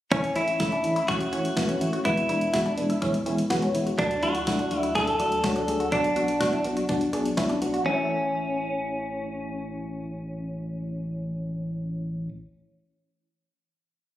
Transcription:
0.11 analog synth bass A1, fm electric piano E3 A3 C#4 E4, synth arpeggio sound C#4, clean electric guitar C#4, kick, closed hi-hat
0.24 closed hi-hat
0.36 analog synth bass A1, fm electric piano E3 A3 C#4 E4, synth arpeggio sound E4, clean electric guitar E4, closed hi-hat
0.48 closed hi-hat
0.60 fm electric piano E3 A3 C#4 E4, synth arpeggio sound E4, kick, snare, closed hi-hat
0.72 synth arpeggio sound D4, closed hi-hat
0.84 analog synth bass A1, fm electric piano E3 A3 C#4 E4, closed hi-hat
0.96 synth arpeggio sound E4, closed hi-hat
1.08 analog synth bass A1, fm electric piano E3 A3 C#4 F#4, synth arpeggio sound C#4, clean electric guitar F#4, kick, closed hi-hat
1.21 closed hi-hat
1.32 analog synth bass A1, fm electric piano E3 A3 C#4 E4, synth arpeggio sound C#4, closed hi-hat
1.45 closed hi-hat
1.57 analog synth bass A1, fm electric piano E3 A3 C#4 E4, synth arpeggio sound B3, kick, snare, closed hi-hat
1.69 synth arpeggio sound C#4, closed hi-hat
1.81 analog synth bass A1, fm electric piano E3 A3 C#4 E4, closed hi-hat
1.93 synth arpeggio sound F#4, closed hi-hat
2.05 analog synth bass E1, fm electric piano E3 G#3 B3 E4, synth arpeggio sound B3, clean electric guitar E4, kick, closed hi-hat
2.17 closed hi-hat
2.29 analog synth bass E1, fm electric piano E3 G#3 B3 D4, synth arpeggio sound E4, closed hi-hat
2.41 closed hi-hat
2.53 fm electric piano E3 G#3 B3 F#4, synth arpeggio sound E4, kick, snare, closed hi-hat
2.66 synth arpeggio sound D4, closed hi-hat
2.78 analog synth bass E1, fm electric piano E3 G#3 B3 D4, closed hi-hat
2.90 synth arpeggio sound E4, closed hi-hat
3.02 analog synth bass E1, fm electric piano E3 G#3 B3 E4, synth arpeggio sound C#4, kick, closed hi-hat
3.14 closed hi-hat
3.26 analog synth bass E1, fm electric piano E3 G#3 B3 E4, synth arpeggio sound C#4, closed hi-hat
3.38 closed hi-hat
3.50 analog synth bass E1, fm electric piano E3 G#3 B3 F#4, synth arpeggio sound B3, kick, snare, closed hi-hat
3.62 synth arpeggio sound C#4, closed hi-hat
3.74 analog synth bass E1, fm electric piano E3 G#3 B3 E4, closed hi-hat
3.86 synth arpeggio sound F#4, closed hi-hat
3.98 analog synth bass D2, fm electric piano F#3 A3 D4 F#4, synth arpeggio sound D4, clean electric guitar D4, kick, closed hi-hat
4.11 closed hi-hat
4.23 analog synth bass D2, fm electric piano F#3 A3 D4 F#4, synth arpeggio sound E4, clean electric guitar F#4, closed hi-hat
4.35 closed hi-hat
4.47 fm electric piano F#3 A3 D4 F#4, synth arpeggio sound E4, kick, snare, closed hi-hat
4.59 synth arpeggio sound D4, closed hi-hat
4.71 analog synth bass D2, fm electric piano F#3 A3 D4 F#4, closed hi-hat
4.78 clean electric guitar E4
4.83 synth arpeggio sound E4, closed hi-hat
4.95 analog synth bass D2, fm electric piano F#3 A3 D4 E4, synth arpeggio sound D4, clean electric guitar A4, kick, closed hi-hat
5.07 closed hi-hat
5.19 analog synth bass D2, fm electric piano F#3 A3 D4 F#4, synth arpeggio sound D4, closed hi-hat
5.32 closed hi-hat
5.44 analog synth bass D2, fm electric piano F#3 A3 D4 F#4, synth arpeggio sound C#4, kick, snare, closed hi-hat
5.56 synth arpeggio sound D4, closed hi-hat
5.68 analog synth bass D2, fm electric piano F#3 A3 D4 G#4, closed hi-hat
5.80 synth arpeggio sound F#4, closed hi-hat
5.92 analog synth bass B1, fm electric piano F#3 B3 D4 F#4, synth arpeggio sound D4, clean electric guitar D4, kick, closed hi-hat
6.04 closed hi-hat
6.16 analog synth bass B1, fm electric piano F#3 B3 D4 F#4, synth arpeggio sound F#4, closed hi-hat
6.28 closed hi-hat
6.40 fm electric piano F#3 B3 D4 F#4, synth arpeggio sound F#4, kick, snare, closed hi-hat
6.53 synth arpeggio sound E4, closed hi-hat
6.64 analog synth bass B1, fm electric piano F#3 B3 D4 F#4, closed hi-hat
6.77 synth arpeggio sound F#4, closed hi-hat
6.89 analog synth bass B1, fm electric piano F#3 B3 D4 F#4, synth arpeggio sound D4, kick, closed hi-hat
7.01 closed hi-hat
7.13 analog synth bass B1, fm electric piano F#3 B3 D4 G#4, synth arpeggio sound D4, closed hi-hat
7.25 closed hi-hat
7.37 analog synth bass B1, fm electric piano F#3 B3 D4 E4, synth arpeggio sound C#4, kick, snare, closed hi-hat
7.49 synth arpeggio sound D4, closed hi-hat
7.62 analog synth bass B1, fm electric piano F#3 B3 D4 F#4, closed hi-hat
7.74 synth arpeggio sound F#4, closed hi-hat
7.84 analog synth bass A1, fm electric piano E3 A3 C#4 E4, synth arpeggio sound A3, clean electric guitar C#4
7.90 synth arpeggio sound C#4
7.94 synth arpeggio sound E4 A4

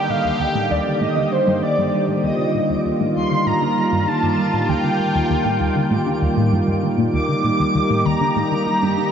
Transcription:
Already playing: analog synth pad D3 D#3 G3 A#3 G4, soft synth lead G5, synth texture D6
0.09 synth arpeggio sound A#2, soft synth lead F5
0.25 synth arpeggio sound D#2
0.40 synth arpeggio sound D#2, soft synth lead G5
0.55 synth arpeggio sound A2
0.71 synth arpeggio sound D#2, soft synth lead D5
0.86 synth arpeggio sound D3
1.01 synth arpeggio sound A2, soft synth lead D#5
1.17 synth arpeggio sound D3
1.32 synth arpeggio sound G3, soft synth lead C5
1.47 synth arpeggio sound G2
1.63 synth arpeggio sound D#3, soft synth lead D5
1.78 synth arpeggio sound G2
1.93 synth arpeggio sound G3
2.08 synth arpeggio sound A2
2.24 synth arpeggio sound D#2, analog synth pad F4, soft synth lead D#5
2.39 synth arpeggio sound D3
2.55 synth arpeggio sound A#2
2.70 synth arpeggio sound D#2
2.85 synth arpeggio sound D#2
3.00 synth arpeggio sound A2
3.16 synth arpeggio sound D#2, soft synth lead C6
3.31 synth arpeggio sound D3
3.46 synth arpeggio sound A2, soft synth lead A#5
3.62 synth arpeggio sound D3
3.77 synth arpeggio sound G3
3.92 synth arpeggio sound G2
4.08 synth arpeggio sound D#3, soft synth lead A5
4.23 synth arpeggio sound G2
4.38 synth arpeggio sound G3
4.54 synth arpeggio sound A2
4.69 synth arpeggio sound D#2, soft synth lead G5
4.84 synth arpeggio sound D3
4.99 synth arpeggio sound A#2
5.15 synth arpeggio sound D#2
5.30 synth arpeggio sound D#2
5.45 synth arpeggio sound A2
5.60 synth arpeggio sound D#2
5.76 synth arpeggio sound D3
5.91 synth arpeggio sound A2
6.06 synth arpeggio sound D3
6.22 synth arpeggio sound D#2
6.37 synth arpeggio sound A2
6.52 synth arpeggio sound G2
6.68 synth arpeggio sound G2
6.83 synth arpeggio sound D#3
6.98 synth arpeggio sound A#2
7.13 synth arpeggio sound D#2, analog synth pad D#4 G4, soft synth lead D6
7.29 synth arpeggio sound D3
7.44 synth arpeggio sound A#2
7.59 synth arpeggio sound D#2
7.75 synth arpeggio sound D#2
7.90 synth arpeggio sound A2
8.05 synth arpeggio sound D#2, soft synth lead A#5
8.21 synth arpeggio sound D3
8.36 synth arpeggio sound A2, soft synth lead A#5
8.51 synth arpeggio sound D3
8.67 synth arpeggio sound G3
8.82 synth arpeggio sound G2
8.97 synth arpeggio sound D#3

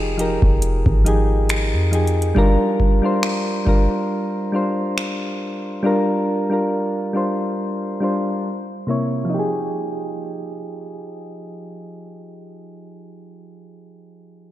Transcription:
Already playing: 808-style bass F1, synth keys F3 D#4 G4 G#4
0.17 synth keys F3 D#4 G4 A#4, closed hi-hat
0.42 808-style bass F1, kick
0.62 closed hi-hat
0.86 808-style bass G#1, kick
1.05 synth keys F3 D#4 G4 G#4, closed hi-hat
1.49 finger snap, closed hi-hat
1.73 808-style bass F2
1.91 synth keys F3 D#4 G4 G#4, closed hi-hat
2.07 closed hi-hat
2.22 closed hi-hat
2.35 synth keys G3 D4 F4 A#4, kick
2.80 kick
3.02 synth keys G3 D4 F4 C5
3.23 finger snap
3.65 synth keys G3 D4 F4 A#4, kick
4.52 synth keys G3 D4 F4 C5
4.98 finger snap
5.83 synth keys G3 D4 F4 A#4
6.50 synth keys G3 D4 F4 A#4
7.13 synth keys G3 D4 F4 C5
8.00 synth keys G3 D4 F4 C5
8.87 synth keys C3 A#3 E4 C#5
9.25 synth keys F3
9.30 synth keys D#4
9.34 synth keys G4
9.39 synth keys G#4

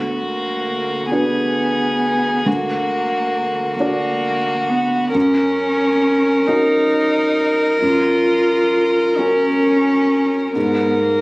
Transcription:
Already playing: felt piano D2, cello B3, violin F#4
0.22 cello A#3
1.11 cello B3, felt piano D4 F#4 B4, violin G#4
2.45 felt piano D2, cello A#3, violin F#4
3.80 cello A#3, felt piano D4 F#4 D5, violin F#4
4.69 cello B3
5.14 felt piano F#2, cello C#4, violin A#4
6.47 felt piano C#4 F#4 A#4, cello D#4
7.82 felt piano F#2, cello F4
9.18 cello C#4, felt piano C#4 F#4 A#4
10.56 felt piano G#2, cello B3, violin A#4
11.01 cello A#3

